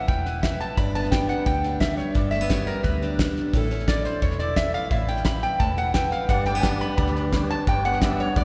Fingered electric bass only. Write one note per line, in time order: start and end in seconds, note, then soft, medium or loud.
0.09 0.62 E1 medium
0.77 1.31 G1 medium
1.46 2.00 D2 medium
2.15 2.69 G1 medium
2.84 3.38 D2 medium
3.53 4.07 A1 medium
4.22 4.76 E1 medium
4.91 5.44 A1 medium
5.60 6.14 E1 medium
6.29 6.83 G1 medium
6.98 7.52 D2 medium
7.67 8.21 G1 medium
8.36 8.44 D2 medium